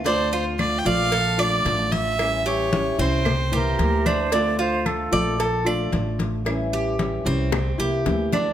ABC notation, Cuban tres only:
X:1
M:4/4
L:1/8
Q:1/4=112
K:Dm
V:1 name="Cuban tres"
D F2 d A d2 z | z G2 C2 G2 D | D F2 d A d2 z | z G2 C2 G2 D |]